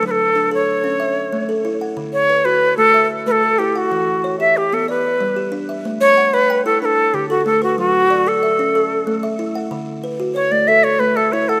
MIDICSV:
0, 0, Header, 1, 3, 480
1, 0, Start_track
1, 0, Tempo, 322754
1, 52, Time_signature, 12, 3, 24, 8
1, 17252, End_track
2, 0, Start_track
2, 0, Title_t, "Native American-style wooden flute"
2, 0, Program_c, 0, 77
2, 99, Note_on_c, 0, 71, 74
2, 162, Note_on_c, 0, 69, 81
2, 176, Note_off_c, 0, 71, 0
2, 747, Note_off_c, 0, 69, 0
2, 809, Note_on_c, 0, 73, 77
2, 2172, Note_off_c, 0, 73, 0
2, 3167, Note_on_c, 0, 73, 95
2, 3642, Note_on_c, 0, 71, 90
2, 3665, Note_off_c, 0, 73, 0
2, 4113, Note_off_c, 0, 71, 0
2, 4122, Note_on_c, 0, 69, 94
2, 4575, Note_off_c, 0, 69, 0
2, 4859, Note_on_c, 0, 71, 82
2, 4929, Note_on_c, 0, 69, 89
2, 4944, Note_off_c, 0, 71, 0
2, 5329, Note_on_c, 0, 67, 79
2, 5351, Note_off_c, 0, 69, 0
2, 5545, Note_off_c, 0, 67, 0
2, 5545, Note_on_c, 0, 67, 76
2, 5615, Note_on_c, 0, 66, 83
2, 5630, Note_off_c, 0, 67, 0
2, 6521, Note_off_c, 0, 66, 0
2, 6543, Note_on_c, 0, 76, 77
2, 6795, Note_on_c, 0, 67, 74
2, 6817, Note_off_c, 0, 76, 0
2, 7043, Note_on_c, 0, 69, 73
2, 7065, Note_off_c, 0, 67, 0
2, 7270, Note_off_c, 0, 69, 0
2, 7284, Note_on_c, 0, 71, 77
2, 8171, Note_off_c, 0, 71, 0
2, 8932, Note_on_c, 0, 73, 105
2, 9424, Note_on_c, 0, 71, 96
2, 9446, Note_off_c, 0, 73, 0
2, 9886, Note_off_c, 0, 71, 0
2, 9895, Note_on_c, 0, 69, 85
2, 10119, Note_off_c, 0, 69, 0
2, 10140, Note_on_c, 0, 71, 85
2, 10188, Note_on_c, 0, 69, 92
2, 10202, Note_off_c, 0, 71, 0
2, 10622, Note_on_c, 0, 67, 82
2, 10645, Note_off_c, 0, 69, 0
2, 10842, Note_off_c, 0, 67, 0
2, 10851, Note_on_c, 0, 66, 87
2, 11076, Note_off_c, 0, 66, 0
2, 11096, Note_on_c, 0, 69, 86
2, 11319, Note_off_c, 0, 69, 0
2, 11349, Note_on_c, 0, 66, 73
2, 11566, Note_off_c, 0, 66, 0
2, 11590, Note_on_c, 0, 66, 86
2, 12315, Note_on_c, 0, 69, 83
2, 12337, Note_off_c, 0, 66, 0
2, 13745, Note_off_c, 0, 69, 0
2, 15387, Note_on_c, 0, 73, 90
2, 15637, Note_on_c, 0, 74, 89
2, 15659, Note_off_c, 0, 73, 0
2, 15877, Note_on_c, 0, 76, 97
2, 15900, Note_off_c, 0, 74, 0
2, 16116, Note_on_c, 0, 73, 91
2, 16138, Note_off_c, 0, 76, 0
2, 16349, Note_on_c, 0, 71, 89
2, 16371, Note_off_c, 0, 73, 0
2, 16600, Note_on_c, 0, 69, 90
2, 16622, Note_off_c, 0, 71, 0
2, 16839, Note_on_c, 0, 73, 92
2, 16862, Note_off_c, 0, 69, 0
2, 17080, Note_on_c, 0, 69, 81
2, 17103, Note_off_c, 0, 73, 0
2, 17252, Note_off_c, 0, 69, 0
2, 17252, End_track
3, 0, Start_track
3, 0, Title_t, "Kalimba"
3, 0, Program_c, 1, 108
3, 0, Note_on_c, 1, 71, 61
3, 41, Note_on_c, 1, 54, 76
3, 287, Note_off_c, 1, 71, 0
3, 527, Note_off_c, 1, 54, 0
3, 527, Note_on_c, 1, 62, 62
3, 766, Note_on_c, 1, 69, 71
3, 1247, Note_on_c, 1, 61, 75
3, 1249, Note_off_c, 1, 69, 0
3, 1250, Note_off_c, 1, 62, 0
3, 1484, Note_on_c, 1, 76, 67
3, 1490, Note_off_c, 1, 61, 0
3, 1971, Note_on_c, 1, 57, 74
3, 2209, Note_off_c, 1, 76, 0
3, 2215, Note_on_c, 1, 69, 61
3, 2451, Note_on_c, 1, 64, 74
3, 2452, Note_off_c, 1, 57, 0
3, 2698, Note_on_c, 1, 78, 58
3, 2928, Note_on_c, 1, 50, 76
3, 2932, Note_off_c, 1, 64, 0
3, 2935, Note_off_c, 1, 69, 0
3, 3176, Note_off_c, 1, 78, 0
3, 3411, Note_off_c, 1, 50, 0
3, 3415, Note_on_c, 1, 71, 63
3, 3648, Note_on_c, 1, 66, 69
3, 4131, Note_off_c, 1, 66, 0
3, 4133, Note_on_c, 1, 57, 69
3, 4135, Note_off_c, 1, 71, 0
3, 4374, Note_off_c, 1, 57, 0
3, 4375, Note_on_c, 1, 76, 64
3, 4853, Note_on_c, 1, 57, 72
3, 5095, Note_off_c, 1, 76, 0
3, 5103, Note_on_c, 1, 69, 59
3, 5335, Note_off_c, 1, 57, 0
3, 5347, Note_on_c, 1, 64, 74
3, 5586, Note_on_c, 1, 78, 60
3, 5820, Note_off_c, 1, 69, 0
3, 5821, Note_off_c, 1, 64, 0
3, 5824, Note_on_c, 1, 52, 73
3, 6061, Note_off_c, 1, 78, 0
3, 6300, Note_off_c, 1, 52, 0
3, 6308, Note_on_c, 1, 73, 61
3, 6543, Note_on_c, 1, 67, 70
3, 7020, Note_off_c, 1, 67, 0
3, 7022, Note_off_c, 1, 73, 0
3, 7029, Note_on_c, 1, 59, 72
3, 7262, Note_on_c, 1, 74, 59
3, 7263, Note_off_c, 1, 59, 0
3, 7741, Note_on_c, 1, 55, 72
3, 7979, Note_on_c, 1, 67, 59
3, 7980, Note_off_c, 1, 74, 0
3, 8206, Note_on_c, 1, 62, 76
3, 8219, Note_off_c, 1, 55, 0
3, 8462, Note_on_c, 1, 76, 57
3, 8691, Note_off_c, 1, 62, 0
3, 8698, Note_off_c, 1, 67, 0
3, 8705, Note_on_c, 1, 57, 79
3, 8939, Note_off_c, 1, 76, 0
3, 9181, Note_off_c, 1, 57, 0
3, 9184, Note_on_c, 1, 78, 64
3, 9423, Note_on_c, 1, 73, 72
3, 9667, Note_on_c, 1, 79, 67
3, 9900, Note_off_c, 1, 73, 0
3, 9900, Note_off_c, 1, 78, 0
3, 9902, Note_on_c, 1, 64, 74
3, 10139, Note_off_c, 1, 64, 0
3, 10142, Note_on_c, 1, 62, 65
3, 10382, Note_off_c, 1, 79, 0
3, 10615, Note_on_c, 1, 50, 76
3, 10857, Note_on_c, 1, 69, 68
3, 10859, Note_off_c, 1, 62, 0
3, 11093, Note_on_c, 1, 57, 72
3, 11095, Note_off_c, 1, 50, 0
3, 11329, Note_on_c, 1, 71, 62
3, 11573, Note_on_c, 1, 54, 82
3, 11574, Note_off_c, 1, 57, 0
3, 11576, Note_off_c, 1, 69, 0
3, 11812, Note_off_c, 1, 71, 0
3, 12052, Note_on_c, 1, 74, 66
3, 12054, Note_off_c, 1, 54, 0
3, 12293, Note_on_c, 1, 69, 73
3, 12536, Note_on_c, 1, 76, 61
3, 12773, Note_off_c, 1, 74, 0
3, 12774, Note_off_c, 1, 69, 0
3, 12778, Note_on_c, 1, 61, 78
3, 13016, Note_off_c, 1, 61, 0
3, 13017, Note_on_c, 1, 69, 66
3, 13255, Note_off_c, 1, 76, 0
3, 13491, Note_on_c, 1, 57, 82
3, 13729, Note_on_c, 1, 76, 66
3, 13736, Note_off_c, 1, 69, 0
3, 13967, Note_on_c, 1, 64, 79
3, 13973, Note_off_c, 1, 57, 0
3, 14209, Note_on_c, 1, 78, 64
3, 14442, Note_on_c, 1, 50, 84
3, 14451, Note_off_c, 1, 64, 0
3, 14452, Note_off_c, 1, 76, 0
3, 14692, Note_off_c, 1, 78, 0
3, 14926, Note_on_c, 1, 71, 66
3, 14929, Note_off_c, 1, 50, 0
3, 15164, Note_on_c, 1, 66, 74
3, 15408, Note_on_c, 1, 73, 67
3, 15641, Note_on_c, 1, 57, 73
3, 15650, Note_off_c, 1, 66, 0
3, 15651, Note_off_c, 1, 71, 0
3, 15888, Note_off_c, 1, 57, 0
3, 15889, Note_on_c, 1, 69, 63
3, 16132, Note_off_c, 1, 73, 0
3, 16365, Note_on_c, 1, 57, 78
3, 16609, Note_on_c, 1, 76, 68
3, 16612, Note_off_c, 1, 69, 0
3, 16850, Note_off_c, 1, 57, 0
3, 16854, Note_on_c, 1, 64, 80
3, 17092, Note_on_c, 1, 78, 61
3, 17252, Note_off_c, 1, 64, 0
3, 17252, Note_off_c, 1, 76, 0
3, 17252, Note_off_c, 1, 78, 0
3, 17252, End_track
0, 0, End_of_file